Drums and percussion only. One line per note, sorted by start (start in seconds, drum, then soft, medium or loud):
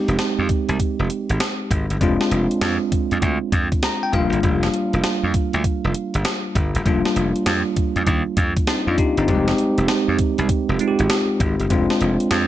0.08 closed hi-hat soft
0.19 snare medium
0.19 closed hi-hat medium
0.49 kick loud
0.49 closed hi-hat medium
0.69 closed hi-hat soft
0.79 kick medium
0.79 closed hi-hat medium
1.10 closed hi-hat medium
1.29 closed hi-hat medium
1.40 snare loud
1.40 closed hi-hat medium
1.71 kick medium
1.71 closed hi-hat medium
1.90 closed hi-hat medium
2.01 kick loud
2.01 closed hi-hat medium
2.21 snare medium
2.31 closed hi-hat medium
2.51 closed hi-hat soft
2.61 snare medium
2.61 closed hi-hat medium
2.92 kick loud
2.92 closed hi-hat medium
3.11 closed hi-hat soft
3.22 kick medium
3.22 closed hi-hat medium
3.52 kick medium
3.52 closed hi-hat medium
3.72 kick loud
3.72 closed hi-hat medium
3.83 snare loud
3.83 closed hi-hat medium
4.13 kick medium
4.13 closed hi-hat medium
4.33 closed hi-hat soft
4.43 kick loud
4.43 closed hi-hat medium
4.63 snare medium
4.74 closed hi-hat medium
4.93 closed hi-hat soft
5.04 snare medium
5.04 closed hi-hat medium
5.34 kick loud
5.34 closed hi-hat medium
5.53 closed hi-hat soft
5.64 kick medium
5.64 closed hi-hat medium
5.94 closed hi-hat medium
6.14 closed hi-hat medium
6.25 snare loud
6.25 closed hi-hat medium
6.55 kick loud
6.55 closed hi-hat medium
6.75 closed hi-hat medium
6.86 kick loud
6.86 closed hi-hat medium
7.05 snare medium
7.16 closed hi-hat medium
7.36 closed hi-hat soft
7.46 snare medium
7.46 closed hi-hat medium
7.76 kick loud
7.76 closed hi-hat medium
7.96 closed hi-hat soft
8.07 kick medium
8.07 closed hi-hat medium
8.37 kick medium
8.37 closed hi-hat medium
8.57 kick loud
8.57 closed hi-hat medium
8.67 snare loud
8.67 closed hi-hat medium
8.98 kick loud
8.98 closed hi-hat medium
9.17 closed hi-hat soft
9.28 kick loud
9.28 closed hi-hat medium
9.48 snare medium
9.58 closed hi-hat medium
9.78 closed hi-hat medium
9.88 snare medium
9.88 closed hi-hat medium
10.19 kick loud
10.19 closed hi-hat medium
10.38 closed hi-hat soft
10.49 kick medium
10.49 closed hi-hat medium
10.79 closed hi-hat medium
10.99 closed hi-hat medium
11.10 snare loud
11.10 closed hi-hat medium
11.40 kick medium
11.40 closed hi-hat medium
11.60 closed hi-hat soft
11.70 kick loud
11.70 closed hi-hat medium
11.90 snare medium
12.01 closed hi-hat medium
12.20 closed hi-hat soft
12.31 snare medium
12.31 closed hi-hat medium